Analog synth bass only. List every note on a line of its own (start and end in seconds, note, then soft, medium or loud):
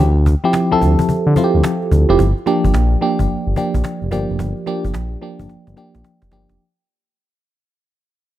0.00 0.35 D2 loud
0.71 0.75 D2 soft
0.82 0.96 D2 medium
1.09 1.16 D3 soft
1.26 1.34 D3 loud
1.54 1.62 D2 loud
1.92 2.06 D2 loud
2.09 2.17 F1 medium
2.19 2.33 G1 loud
2.64 2.72 G1 medium
2.74 2.96 A#1 medium
3.19 3.27 G1 loud
3.29 3.36 G1 medium
3.47 3.55 G1 medium
3.74 3.82 A#1 medium
4.02 4.10 F1 loud
4.12 4.26 G1 medium
4.30 4.37 F1 loud
4.39 4.53 G1 loud
4.85 4.92 G1 medium
4.95 5.16 A#1 medium
5.39 5.47 G1 loud
5.50 5.57 G1 soft
5.67 5.75 G1 loud
5.95 6.03 A#1 medium
6.22 6.30 F1 medium
6.32 6.46 G1 medium
6.50 6.58 F1 medium